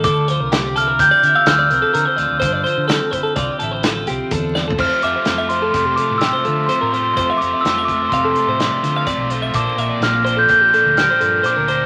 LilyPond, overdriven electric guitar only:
\new Staff \with { instrumentName = "Overdriven electric guitar" } { \time 5/4 \key f \major \tempo 4 = 126 r1 r4 | r1 r4 | <f, c f a c' f'>8 <f a c' f'>8 <f a c' f'>8 <f a c' f'>8 <f, c f a c' f'>8 <f a c' f'>8 <f a c' f'>4 <f, c f a c' f'>8 <f a c' f'>8 | <f, c f a c' f'>8 <f a c' f'>8 <f a c' f'>8 <f a c' f'>8 <f, c f a c' f'>8 <f a c' f'>8 <f a c' f'>4 <f, c f a c' f'>8 <f a c' f'>8 |
<bes, f bes d'>8 <f bes d'>8 <bes, f bes d'>8 <f bes d'>8 <bes, f bes d'>8 <f bes d'>8 <bes, f bes d'>4 <bes, f bes d'>8 <f bes d'>8 | }